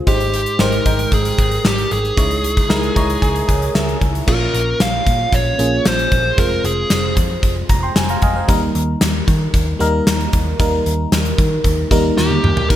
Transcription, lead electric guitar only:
0.08 0.61 G4 medium
0.61 1.13 A#4 loud
1.14 1.66 G#4 medium
1.67 1.92 G4 medium
1.92 3.98 G#4 medium
4.29 4.82 A#4 medium
4.81 5.35 F5 loud
5.34 5.87 C#5 medium
5.87 6.41 C5 medium
6.39 6.65 A#4 medium
6.66 7.14 G#4 medium
12.17 12.69 G4 medium
12.70 12.76 A#4 loud

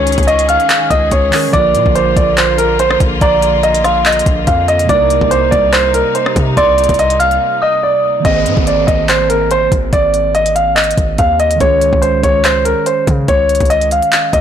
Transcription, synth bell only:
0.00 0.45 C#6 loud
0.49 0.88 F6 medium
0.90 1.50 D#6 medium
1.54 2.34 D6 loud
3.22 3.81 A#5 loud
3.85 4.04 C6 medium
4.89 5.69 D6 loud
6.57 7.16 C6 loud
7.20 7.59 F6 medium
7.62 8.21 D#6 medium

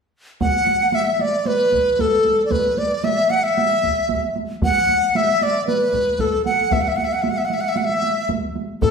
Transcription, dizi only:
0.41 0.96 F#5 medium
0.95 1.23 E5 medium
1.21 1.48 D5 medium
1.47 2.02 B4 medium
2.01 2.45 A4 medium
2.45 2.53 D5 medium
2.51 2.80 B4 medium
2.78 3.06 D5 medium
3.04 3.32 E5 medium
3.30 3.45 F#5 medium
3.43 4.35 E5 medium
4.64 5.18 F#5 medium
5.16 5.44 E5 medium
5.43 5.66 D5 medium
5.67 6.22 B4 medium
6.20 6.45 A4 medium
6.46 6.74 F#5 medium
6.72 6.83 E5 medium
6.81 6.90 F#5 medium
6.88 6.98 E5 medium
6.96 7.06 F#5 medium
7.05 7.14 E5 medium
7.13 7.24 F#5 soft
7.22 7.31 E5 soft
7.30 7.39 F#5 medium
7.38 7.46 E5 medium
7.45 7.55 F#5 medium
7.54 7.62 E5 medium
7.61 7.70 F#5 medium
7.69 7.79 E5 medium
7.77 7.86 F#5 medium
7.85 8.29 E5 medium
8.82 8.91 A4 medium

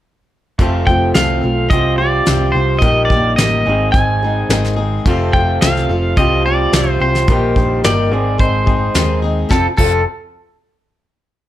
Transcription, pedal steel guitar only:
0.87 1.14 G5 medium
1.14 1.73 F5 medium
1.70 1.98 D#5 medium
1.98 2.56 D5 medium
2.52 2.79 C5 medium
2.79 3.05 D#5 medium
3.05 3.36 D5 medium
3.36 3.89 D#5 medium
3.92 4.73 G#5 medium
5.33 5.61 G5 loud
5.61 6.18 F5 loud
6.17 6.43 D#5 medium
6.46 6.90 D5 medium
6.90 7.02 C5 medium
7.02 7.80 C5 medium
7.85 8.40 D5 medium
8.40 9.19 C5 medium
9.51 9.66 A4 medium
9.77 10.04 A4 medium

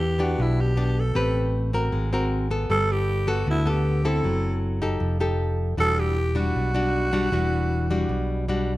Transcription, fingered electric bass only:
0.00 0.34 E2 medium
0.38 1.11 B1 medium
1.15 1.88 A1 medium
1.92 2.65 G#1 medium
2.69 3.42 G1 medium
3.46 4.20 D2 medium
4.24 4.97 F#1 medium
5.01 5.74 F1 medium
5.77 6.51 E1 medium
6.55 7.28 B1 medium
7.32 8.05 E1 medium
8.09 8.77 B1 medium

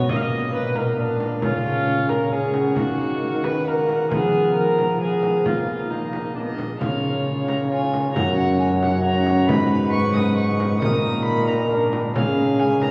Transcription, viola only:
0.00 0.10 C#5 medium
0.09 0.17 D#5 medium
0.16 0.24 F5 medium
0.22 0.52 D#5 medium
0.53 0.77 B4 medium
0.75 0.98 A#4 medium
1.42 2.11 F4 loud
2.09 2.33 A#4 medium
2.32 2.76 G#4 medium
2.77 3.46 F#4 medium
3.44 3.69 B4 medium
3.67 4.10 A#4 medium
4.11 4.54 G#4 medium
4.55 4.99 A#4 medium
5.01 5.47 G#4 medium
5.46 5.91 F4 medium
5.90 6.34 D#4 medium
6.35 6.43 D4 soft
6.42 6.50 B3 soft
6.49 6.80 D4 medium
6.81 7.66 C#5 medium
7.70 8.13 C#5 medium
8.14 9.02 C#5 medium
9.04 9.50 C#5 medium
9.48 10.81 B4 medium
10.82 11.69 A#4 medium
11.71 12.14 A#4 medium
12.15 12.91 G#4 medium

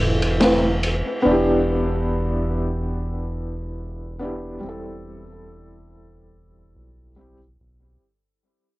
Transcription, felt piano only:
0.00 0.35 A3 medium
0.00 0.36 C4 medium
0.00 0.38 E4 medium
0.00 0.39 A4 medium
0.40 0.60 A3 medium
0.40 0.61 C4 medium
0.40 0.62 E4 medium
0.44 0.63 B4 medium
1.22 4.15 B3 medium
1.22 4.17 D4 medium
1.28 4.18 E4 medium
1.28 4.20 G4 medium
4.19 4.58 B3 medium
4.19 4.59 D4 medium
4.19 4.60 E4 medium
4.23 4.60 G4 medium
4.60 7.11 G3 medium
4.60 7.12 C4 medium
4.66 7.14 E4 medium
4.66 7.15 A4 medium
7.16 7.37 G3 medium
7.16 7.37 C4 medium
7.16 7.38 E4 medium
7.21 7.39 G4 medium

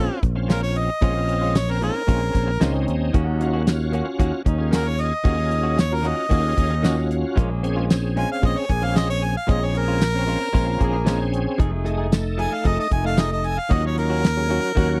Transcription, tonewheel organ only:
0.00 0.19 C4 medium
0.00 0.19 C#4 medium
0.00 0.20 F4 medium
0.36 0.90 C4 medium
0.36 0.90 C#4 medium
0.36 0.90 F4 medium
1.02 1.56 C4 medium
1.02 1.57 C#4 medium
1.02 1.57 F4 medium
1.68 1.79 C4 medium
1.68 1.79 C#4 medium
1.68 1.79 A#4 medium
1.81 2.03 C4 medium
1.81 2.03 C#4 medium
1.81 2.03 D#4 medium
2.08 2.51 C4 medium
2.08 2.52 C#4 medium
2.08 2.52 G#4 medium
2.60 3.14 C4 medium
2.60 3.14 C#4 medium
2.60 3.14 D#4 loud
3.41 3.62 C#4 loud
3.41 3.63 F4 medium
3.41 3.63 F#4 loud
3.67 4.42 C#4 medium
3.67 4.42 F4 medium
3.67 4.42 F#4 medium
4.59 5.13 C#4 medium
4.59 5.13 F4 medium
4.59 5.13 G#4 medium
5.24 5.79 C#4 medium
5.24 5.79 F4 medium
5.24 5.79 G#4 medium
5.91 6.02 C#4 medium
5.91 6.02 F4 medium
5.91 6.02 F#4 medium
6.05 6.27 C#4 medium
6.05 6.27 F4 medium
6.05 6.27 F#4 medium
6.31 6.75 C#4 medium
6.31 6.75 F4 medium
6.31 6.75 G#4 medium
6.84 7.37 C#4 medium
6.84 7.37 F4 medium
6.84 7.37 F#4 loud
7.63 7.85 C4 loud
7.63 7.85 C#4 medium
7.63 7.85 G#4 loud
7.90 8.65 C4 medium
7.90 8.65 C#4 medium
7.90 8.66 G#4 loud
8.82 9.36 C4 medium
8.82 9.36 C#4 medium
8.82 9.36 G#4 medium
9.48 10.02 C4 medium
9.48 10.02 C#4 medium
9.48 10.02 G#4 medium
10.14 10.25 C4 medium
10.14 10.25 C#4 medium
10.14 10.25 A#4 medium
10.27 10.49 C4 medium
10.27 10.49 C#4 medium
10.27 10.49 A#4 medium
10.52 10.96 C4 medium
10.52 10.97 C#4 medium
10.52 10.97 F4 loud
11.06 11.59 C4 medium
11.06 11.59 C#4 medium
11.06 11.59 G#4 loud
11.85 12.07 A3 medium
11.85 12.08 D#4 medium
11.85 12.07 G#4 loud
12.12 12.88 A3 medium
12.12 12.88 D#4 medium
12.12 12.88 A4 medium
13.04 13.59 A3 medium
13.04 13.59 D#4 medium
13.04 13.59 A4 medium
13.70 14.25 F#3 medium
13.70 14.25 C#4 medium
13.70 14.25 F4 medium
14.37 14.48 F#3 medium
14.37 14.48 C#4 medium
14.37 14.48 G#4 medium
14.51 14.72 F#3 medium
14.51 14.72 C#4 medium
14.51 14.72 F#4 medium
14.77 15.00 F#3 loud
14.77 15.00 C#4 medium
14.77 15.00 F#4 loud

